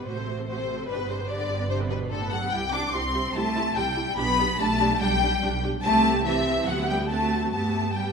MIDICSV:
0, 0, Header, 1, 6, 480
1, 0, Start_track
1, 0, Key_signature, 1, "major"
1, 0, Tempo, 412371
1, 1034, Time_signature, 4, 2, 24, 8
1, 6317, Tempo, 424929
1, 9361, End_track
2, 0, Start_track
2, 0, Title_t, "Violin section"
2, 0, Program_c, 0, 48
2, 61, Note_on_c, 0, 72, 85
2, 537, Note_off_c, 0, 72, 0
2, 550, Note_on_c, 0, 72, 91
2, 1019, Note_on_c, 0, 71, 101
2, 1022, Note_off_c, 0, 72, 0
2, 1261, Note_off_c, 0, 71, 0
2, 1272, Note_on_c, 0, 72, 90
2, 1501, Note_on_c, 0, 74, 95
2, 1510, Note_off_c, 0, 72, 0
2, 1974, Note_on_c, 0, 72, 99
2, 1981, Note_off_c, 0, 74, 0
2, 2067, Note_off_c, 0, 72, 0
2, 2216, Note_on_c, 0, 71, 93
2, 2309, Note_off_c, 0, 71, 0
2, 2452, Note_on_c, 0, 69, 109
2, 2689, Note_on_c, 0, 78, 108
2, 2693, Note_off_c, 0, 69, 0
2, 2930, Note_on_c, 0, 79, 114
2, 2934, Note_off_c, 0, 78, 0
2, 3175, Note_off_c, 0, 79, 0
2, 3176, Note_on_c, 0, 86, 115
2, 3418, Note_off_c, 0, 86, 0
2, 3420, Note_on_c, 0, 84, 112
2, 3893, Note_on_c, 0, 81, 127
2, 3900, Note_off_c, 0, 84, 0
2, 4370, Note_off_c, 0, 81, 0
2, 4390, Note_on_c, 0, 79, 113
2, 4863, Note_on_c, 0, 83, 127
2, 4870, Note_off_c, 0, 79, 0
2, 5337, Note_off_c, 0, 83, 0
2, 5355, Note_on_c, 0, 81, 127
2, 5827, Note_off_c, 0, 81, 0
2, 5842, Note_on_c, 0, 79, 126
2, 6541, Note_off_c, 0, 79, 0
2, 6773, Note_on_c, 0, 81, 127
2, 7221, Note_off_c, 0, 81, 0
2, 7261, Note_on_c, 0, 76, 127
2, 7728, Note_off_c, 0, 76, 0
2, 7730, Note_on_c, 0, 78, 111
2, 7974, Note_off_c, 0, 78, 0
2, 7978, Note_on_c, 0, 79, 100
2, 8069, Note_off_c, 0, 79, 0
2, 8211, Note_on_c, 0, 81, 114
2, 8680, Note_off_c, 0, 81, 0
2, 8694, Note_on_c, 0, 81, 106
2, 9178, Note_off_c, 0, 81, 0
2, 9187, Note_on_c, 0, 79, 96
2, 9361, Note_off_c, 0, 79, 0
2, 9361, End_track
3, 0, Start_track
3, 0, Title_t, "Violin section"
3, 0, Program_c, 1, 48
3, 78, Note_on_c, 1, 72, 68
3, 539, Note_off_c, 1, 72, 0
3, 553, Note_on_c, 1, 72, 73
3, 1023, Note_off_c, 1, 72, 0
3, 1031, Note_on_c, 1, 71, 84
3, 1267, Note_off_c, 1, 71, 0
3, 1271, Note_on_c, 1, 72, 73
3, 1506, Note_on_c, 1, 74, 84
3, 1510, Note_off_c, 1, 72, 0
3, 1974, Note_off_c, 1, 74, 0
3, 1981, Note_on_c, 1, 72, 86
3, 2074, Note_off_c, 1, 72, 0
3, 2218, Note_on_c, 1, 71, 82
3, 2311, Note_off_c, 1, 71, 0
3, 2454, Note_on_c, 1, 69, 89
3, 2694, Note_off_c, 1, 69, 0
3, 2703, Note_on_c, 1, 78, 95
3, 2934, Note_on_c, 1, 79, 91
3, 2941, Note_off_c, 1, 78, 0
3, 3176, Note_off_c, 1, 79, 0
3, 3179, Note_on_c, 1, 86, 101
3, 3272, Note_off_c, 1, 86, 0
3, 3412, Note_on_c, 1, 84, 93
3, 3887, Note_off_c, 1, 84, 0
3, 3894, Note_on_c, 1, 81, 105
3, 4372, Note_on_c, 1, 79, 95
3, 4380, Note_off_c, 1, 81, 0
3, 4861, Note_off_c, 1, 79, 0
3, 4861, Note_on_c, 1, 83, 119
3, 5336, Note_off_c, 1, 83, 0
3, 5356, Note_on_c, 1, 81, 123
3, 5830, Note_on_c, 1, 79, 109
3, 5837, Note_off_c, 1, 81, 0
3, 6549, Note_off_c, 1, 79, 0
3, 6788, Note_on_c, 1, 81, 125
3, 7229, Note_off_c, 1, 81, 0
3, 7264, Note_on_c, 1, 76, 99
3, 7726, Note_on_c, 1, 78, 99
3, 7730, Note_off_c, 1, 76, 0
3, 7967, Note_on_c, 1, 79, 90
3, 7972, Note_off_c, 1, 78, 0
3, 8203, Note_on_c, 1, 81, 104
3, 8214, Note_off_c, 1, 79, 0
3, 8669, Note_off_c, 1, 81, 0
3, 8682, Note_on_c, 1, 81, 104
3, 9172, Note_off_c, 1, 81, 0
3, 9178, Note_on_c, 1, 79, 82
3, 9361, Note_off_c, 1, 79, 0
3, 9361, End_track
4, 0, Start_track
4, 0, Title_t, "Viola section"
4, 0, Program_c, 2, 48
4, 80, Note_on_c, 2, 57, 56
4, 82, Note_on_c, 2, 66, 58
4, 190, Note_off_c, 2, 57, 0
4, 191, Note_off_c, 2, 66, 0
4, 199, Note_on_c, 2, 60, 51
4, 200, Note_on_c, 2, 69, 50
4, 316, Note_on_c, 2, 66, 57
4, 317, Note_off_c, 2, 60, 0
4, 317, Note_on_c, 2, 57, 50
4, 318, Note_off_c, 2, 69, 0
4, 436, Note_off_c, 2, 57, 0
4, 436, Note_off_c, 2, 66, 0
4, 451, Note_on_c, 2, 60, 56
4, 451, Note_on_c, 2, 69, 52
4, 563, Note_off_c, 2, 60, 0
4, 563, Note_off_c, 2, 69, 0
4, 563, Note_on_c, 2, 57, 55
4, 567, Note_on_c, 2, 66, 56
4, 670, Note_off_c, 2, 57, 0
4, 670, Note_on_c, 2, 69, 53
4, 671, Note_on_c, 2, 60, 52
4, 672, Note_off_c, 2, 66, 0
4, 789, Note_on_c, 2, 66, 57
4, 790, Note_on_c, 2, 57, 53
4, 792, Note_off_c, 2, 60, 0
4, 792, Note_off_c, 2, 69, 0
4, 904, Note_on_c, 2, 69, 57
4, 909, Note_on_c, 2, 60, 60
4, 911, Note_off_c, 2, 66, 0
4, 912, Note_off_c, 2, 57, 0
4, 1029, Note_off_c, 2, 69, 0
4, 1032, Note_off_c, 2, 60, 0
4, 1034, Note_on_c, 2, 62, 64
4, 1034, Note_on_c, 2, 67, 65
4, 1145, Note_off_c, 2, 62, 0
4, 1145, Note_off_c, 2, 67, 0
4, 1145, Note_on_c, 2, 59, 57
4, 1146, Note_on_c, 2, 71, 59
4, 1266, Note_on_c, 2, 67, 56
4, 1267, Note_on_c, 2, 62, 54
4, 1269, Note_off_c, 2, 59, 0
4, 1269, Note_off_c, 2, 71, 0
4, 1389, Note_off_c, 2, 62, 0
4, 1389, Note_off_c, 2, 67, 0
4, 1389, Note_on_c, 2, 71, 61
4, 1392, Note_on_c, 2, 59, 58
4, 1501, Note_on_c, 2, 62, 55
4, 1503, Note_on_c, 2, 67, 55
4, 1509, Note_off_c, 2, 71, 0
4, 1510, Note_off_c, 2, 59, 0
4, 1612, Note_on_c, 2, 59, 59
4, 1615, Note_off_c, 2, 62, 0
4, 1616, Note_off_c, 2, 67, 0
4, 1616, Note_on_c, 2, 71, 61
4, 1739, Note_off_c, 2, 59, 0
4, 1741, Note_off_c, 2, 71, 0
4, 1741, Note_on_c, 2, 67, 65
4, 1743, Note_on_c, 2, 62, 67
4, 1862, Note_on_c, 2, 59, 61
4, 1863, Note_off_c, 2, 67, 0
4, 1864, Note_off_c, 2, 62, 0
4, 1865, Note_on_c, 2, 71, 60
4, 1977, Note_on_c, 2, 62, 67
4, 1980, Note_on_c, 2, 67, 71
4, 1984, Note_off_c, 2, 59, 0
4, 1985, Note_off_c, 2, 71, 0
4, 2093, Note_off_c, 2, 62, 0
4, 2095, Note_off_c, 2, 67, 0
4, 2103, Note_on_c, 2, 71, 60
4, 2104, Note_on_c, 2, 59, 58
4, 2216, Note_on_c, 2, 67, 59
4, 2219, Note_on_c, 2, 62, 67
4, 2225, Note_off_c, 2, 71, 0
4, 2226, Note_off_c, 2, 59, 0
4, 2340, Note_on_c, 2, 59, 66
4, 2342, Note_off_c, 2, 67, 0
4, 2343, Note_off_c, 2, 62, 0
4, 2343, Note_on_c, 2, 71, 63
4, 2461, Note_on_c, 2, 62, 67
4, 2461, Note_on_c, 2, 67, 68
4, 2463, Note_off_c, 2, 59, 0
4, 2465, Note_off_c, 2, 71, 0
4, 2575, Note_off_c, 2, 62, 0
4, 2575, Note_off_c, 2, 67, 0
4, 2583, Note_on_c, 2, 59, 69
4, 2584, Note_on_c, 2, 71, 68
4, 2700, Note_on_c, 2, 67, 68
4, 2702, Note_on_c, 2, 62, 68
4, 2703, Note_off_c, 2, 59, 0
4, 2704, Note_off_c, 2, 71, 0
4, 2815, Note_on_c, 2, 71, 67
4, 2816, Note_on_c, 2, 59, 67
4, 2821, Note_off_c, 2, 67, 0
4, 2822, Note_off_c, 2, 62, 0
4, 2930, Note_on_c, 2, 64, 79
4, 2931, Note_on_c, 2, 67, 85
4, 2938, Note_off_c, 2, 71, 0
4, 2939, Note_off_c, 2, 59, 0
4, 3023, Note_off_c, 2, 64, 0
4, 3024, Note_off_c, 2, 67, 0
4, 3178, Note_on_c, 2, 64, 65
4, 3178, Note_on_c, 2, 67, 68
4, 3271, Note_off_c, 2, 64, 0
4, 3271, Note_off_c, 2, 67, 0
4, 3415, Note_on_c, 2, 67, 71
4, 3417, Note_on_c, 2, 64, 73
4, 3508, Note_off_c, 2, 67, 0
4, 3510, Note_off_c, 2, 64, 0
4, 3649, Note_on_c, 2, 64, 78
4, 3651, Note_on_c, 2, 67, 80
4, 3742, Note_off_c, 2, 64, 0
4, 3744, Note_off_c, 2, 67, 0
4, 3898, Note_on_c, 2, 67, 85
4, 3899, Note_on_c, 2, 64, 92
4, 3991, Note_off_c, 2, 67, 0
4, 3993, Note_off_c, 2, 64, 0
4, 4132, Note_on_c, 2, 64, 71
4, 4133, Note_on_c, 2, 67, 79
4, 4225, Note_off_c, 2, 64, 0
4, 4226, Note_off_c, 2, 67, 0
4, 4372, Note_on_c, 2, 64, 86
4, 4373, Note_on_c, 2, 67, 76
4, 4465, Note_off_c, 2, 64, 0
4, 4466, Note_off_c, 2, 67, 0
4, 4612, Note_on_c, 2, 64, 80
4, 4615, Note_on_c, 2, 67, 79
4, 4706, Note_off_c, 2, 64, 0
4, 4709, Note_off_c, 2, 67, 0
4, 4857, Note_on_c, 2, 62, 89
4, 4859, Note_on_c, 2, 67, 89
4, 4951, Note_off_c, 2, 62, 0
4, 4952, Note_off_c, 2, 67, 0
4, 5112, Note_on_c, 2, 62, 76
4, 5112, Note_on_c, 2, 67, 81
4, 5205, Note_off_c, 2, 62, 0
4, 5206, Note_off_c, 2, 67, 0
4, 5344, Note_on_c, 2, 67, 84
4, 5348, Note_on_c, 2, 62, 83
4, 5437, Note_off_c, 2, 67, 0
4, 5441, Note_off_c, 2, 62, 0
4, 5590, Note_on_c, 2, 67, 90
4, 5591, Note_on_c, 2, 62, 89
4, 5683, Note_off_c, 2, 67, 0
4, 5684, Note_off_c, 2, 62, 0
4, 5835, Note_on_c, 2, 67, 94
4, 5837, Note_on_c, 2, 62, 86
4, 5928, Note_off_c, 2, 67, 0
4, 5930, Note_off_c, 2, 62, 0
4, 6078, Note_on_c, 2, 62, 82
4, 6078, Note_on_c, 2, 67, 81
4, 6171, Note_off_c, 2, 62, 0
4, 6171, Note_off_c, 2, 67, 0
4, 6320, Note_on_c, 2, 62, 88
4, 6322, Note_on_c, 2, 67, 84
4, 6410, Note_off_c, 2, 62, 0
4, 6412, Note_off_c, 2, 67, 0
4, 6558, Note_on_c, 2, 62, 86
4, 6562, Note_on_c, 2, 67, 85
4, 6648, Note_off_c, 2, 62, 0
4, 6653, Note_off_c, 2, 67, 0
4, 6792, Note_on_c, 2, 60, 99
4, 6792, Note_on_c, 2, 67, 100
4, 7231, Note_off_c, 2, 60, 0
4, 7231, Note_off_c, 2, 67, 0
4, 7257, Note_on_c, 2, 67, 83
4, 7258, Note_on_c, 2, 60, 89
4, 7718, Note_off_c, 2, 67, 0
4, 7727, Note_off_c, 2, 60, 0
4, 7730, Note_on_c, 2, 59, 90
4, 7731, Note_on_c, 2, 67, 89
4, 8206, Note_off_c, 2, 67, 0
4, 8215, Note_off_c, 2, 59, 0
4, 8218, Note_on_c, 2, 60, 78
4, 8220, Note_on_c, 2, 66, 78
4, 8695, Note_off_c, 2, 60, 0
4, 8696, Note_off_c, 2, 66, 0
4, 8703, Note_on_c, 2, 59, 75
4, 8705, Note_on_c, 2, 67, 80
4, 9170, Note_off_c, 2, 59, 0
4, 9174, Note_off_c, 2, 67, 0
4, 9184, Note_on_c, 2, 59, 72
4, 9188, Note_on_c, 2, 67, 74
4, 9361, Note_off_c, 2, 59, 0
4, 9361, Note_off_c, 2, 67, 0
4, 9361, End_track
5, 0, Start_track
5, 0, Title_t, "Cello section"
5, 0, Program_c, 3, 48
5, 79, Note_on_c, 3, 48, 74
5, 537, Note_off_c, 3, 48, 0
5, 551, Note_on_c, 3, 48, 76
5, 1022, Note_off_c, 3, 48, 0
5, 1030, Note_on_c, 3, 47, 84
5, 1270, Note_on_c, 3, 48, 76
5, 1271, Note_off_c, 3, 47, 0
5, 1363, Note_off_c, 3, 48, 0
5, 1503, Note_on_c, 3, 50, 80
5, 1973, Note_off_c, 3, 50, 0
5, 1984, Note_on_c, 3, 48, 89
5, 2221, Note_off_c, 3, 48, 0
5, 2222, Note_on_c, 3, 47, 87
5, 2459, Note_on_c, 3, 45, 84
5, 2464, Note_off_c, 3, 47, 0
5, 2698, Note_on_c, 3, 54, 89
5, 2701, Note_off_c, 3, 45, 0
5, 2930, Note_on_c, 3, 55, 98
5, 2939, Note_off_c, 3, 54, 0
5, 3023, Note_off_c, 3, 55, 0
5, 3165, Note_on_c, 3, 62, 109
5, 3407, Note_off_c, 3, 62, 0
5, 3408, Note_on_c, 3, 60, 104
5, 3885, Note_off_c, 3, 60, 0
5, 3895, Note_on_c, 3, 57, 125
5, 4381, Note_off_c, 3, 57, 0
5, 4383, Note_on_c, 3, 55, 104
5, 4863, Note_on_c, 3, 59, 121
5, 4867, Note_off_c, 3, 55, 0
5, 5337, Note_off_c, 3, 59, 0
5, 5353, Note_on_c, 3, 57, 120
5, 5826, Note_off_c, 3, 57, 0
5, 5832, Note_on_c, 3, 55, 111
5, 6550, Note_off_c, 3, 55, 0
5, 6796, Note_on_c, 3, 57, 127
5, 7233, Note_off_c, 3, 57, 0
5, 7259, Note_on_c, 3, 52, 105
5, 7727, Note_off_c, 3, 52, 0
5, 7739, Note_on_c, 3, 54, 103
5, 7977, Note_on_c, 3, 55, 104
5, 7978, Note_off_c, 3, 54, 0
5, 8068, Note_off_c, 3, 55, 0
5, 8220, Note_on_c, 3, 57, 101
5, 8691, Note_off_c, 3, 57, 0
5, 8704, Note_on_c, 3, 57, 104
5, 9184, Note_off_c, 3, 57, 0
5, 9192, Note_on_c, 3, 55, 72
5, 9361, Note_off_c, 3, 55, 0
5, 9361, End_track
6, 0, Start_track
6, 0, Title_t, "Double bass section"
6, 0, Program_c, 4, 48
6, 73, Note_on_c, 4, 33, 66
6, 1013, Note_off_c, 4, 33, 0
6, 1038, Note_on_c, 4, 31, 78
6, 2944, Note_off_c, 4, 31, 0
6, 2944, Note_on_c, 4, 36, 87
6, 3364, Note_off_c, 4, 36, 0
6, 3416, Note_on_c, 4, 36, 93
6, 3842, Note_off_c, 4, 36, 0
6, 3893, Note_on_c, 4, 36, 95
6, 4323, Note_off_c, 4, 36, 0
6, 4382, Note_on_c, 4, 36, 95
6, 4810, Note_off_c, 4, 36, 0
6, 4864, Note_on_c, 4, 35, 103
6, 5290, Note_off_c, 4, 35, 0
6, 5354, Note_on_c, 4, 35, 98
6, 5779, Note_off_c, 4, 35, 0
6, 5842, Note_on_c, 4, 35, 105
6, 6263, Note_off_c, 4, 35, 0
6, 6319, Note_on_c, 4, 35, 93
6, 6732, Note_off_c, 4, 35, 0
6, 6791, Note_on_c, 4, 36, 100
6, 7695, Note_off_c, 4, 36, 0
6, 7743, Note_on_c, 4, 38, 90
6, 8689, Note_off_c, 4, 38, 0
6, 8703, Note_on_c, 4, 43, 76
6, 9361, Note_off_c, 4, 43, 0
6, 9361, End_track
0, 0, End_of_file